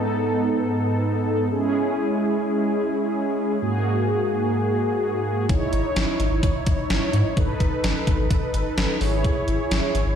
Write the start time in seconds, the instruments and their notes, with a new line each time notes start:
Already playing: analog polysynth G#2 B3 D#4 A4
1.51 analog polysynth G#3 C#4 E4 G#4
3.62 analog polysynth G#2 A#3 F#4 G#4
5.49 analog synth bass G#1, analog polysynth D#4 E4 C#5, kick, closed hi-hat
5.73 analog synth bass G#1, closed hi-hat
5.96 analog synth bass G#1, snare, closed hi-hat
6.20 analog synth bass G#1, closed hi-hat
6.31 analog synth bass G#1
6.43 analog synth bass G#1, kick, closed hi-hat
6.66 analog synth bass G#1, kick, closed hi-hat
6.90 analog synth bass G#1, snare, closed hi-hat
7.13 analog synth bass G#2, closed hi-hat
7.37 analog synth bass G#1, analog polysynth D#4 A4 B4, kick, closed hi-hat
7.60 analog synth bass G#1, kick, closed hi-hat
7.84 analog synth bass G#1, snare, closed hi-hat
8.07 analog synth bass G#1, kick, closed hi-hat
8.19 analog synth bass G#1
8.31 analog synth bass G#1, kick, closed hi-hat
8.54 analog synth bass G#1, closed hi-hat
8.78 analog synth bass G#1, snare, closed hi-hat
9.01 analog synth bass G#1, analog polysynth E4 G#4 C#5, open hi-hat
9.24 kick, closed hi-hat
9.48 analog synth bass G#1, closed hi-hat
9.71 analog synth bass G#1, snare, closed hi-hat
9.95 analog synth bass G#1, closed hi-hat
10.06 analog synth bass G#1